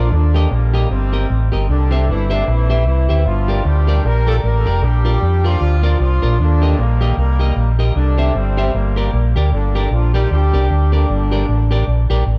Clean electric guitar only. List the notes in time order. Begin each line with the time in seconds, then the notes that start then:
0.34 G4 A#4 D#5
0.74 G4 A#4 D#5
1.13 G4 A#4 D#5
1.52 G4 A#4 D#5
1.91 G4 C5 E5
2.30 G4 C5 E5
2.70 G4 C5 E5
3.09 G4 C5 E5
3.48 G4 A#4 D5
3.87 G4 A#4 D5
4.27 G4 A#4 D5
4.66 G4 A#4 D5
5.05 F4 A#4 D5
5.44 F4 A#4 D5
5.83 F4 A#4 D5
6.22 F4 A#4 D5
6.62 G4 A#4 D#5
7.01 G4 A#4 D#5
7.39 G4 A#4 D#5
7.79 G4 A#4 D#5
8.18 G4 C5 E5
8.57 G4 C5 E5
8.96 G4 A#4 D5
9.36 G4 A#4 D5
9.75 G4 A#4 D5
10.14 G4 A#4 D5
10.53 G4 A#4 D5
10.92 G4 A#4 D5
11.31 G4 A#4 D5
11.71 G4 A#4 D5
12.10 G4 A#4 D5